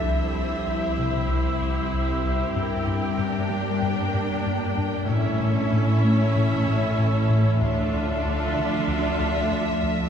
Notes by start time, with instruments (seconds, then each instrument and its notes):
Already playing: violin section E5, ambient pad E5
0.03 cello section C2, double bass section C2, analog synth bass C2, ambient pad G3 C4 C5, viola section E4 G4, violin section C5
0.35 analog synth bass C2
0.67 analog synth bass C2
0.98 analog synth bass C3
1.29 analog synth bass C2
1.61 analog synth bass C2
1.93 analog synth bass C2
2.25 analog synth bass C2
2.55 double bass section G1, analog synth bass G2, cello section G2, ambient pad A#3 D4 D5, violin section A#4 G5
2.87 analog synth bass G2
3.18 analog synth bass G2, viola section D4
3.50 analog synth bass G3
3.82 analog synth bass G2
4.14 analog synth bass G2
4.46 analog synth bass G2
4.77 analog synth bass G2
5.08 double bass section A1, cello section A2, analog synth bass A2, ambient pad E3 A3 C#5 E5, viola section C#4 E4, violin section A4 E5
5.40 analog synth bass A2
5.72 analog synth bass A2
6.04 analog synth bass A3
6.36 analog synth bass A2
6.67 analog synth bass A2
6.98 analog synth bass A2
7.29 analog synth bass A2
7.61 analog synth bass D2, double bass section D2, cello section D3, ambient pad F3 D5, viola section D4 F4, violin section A4 E5
7.93 analog synth bass D2
8.25 analog synth bass D2
8.57 analog synth bass D3
8.88 analog synth bass D2
9.20 analog synth bass D2
9.51 analog synth bass D2
9.83 analog synth bass D2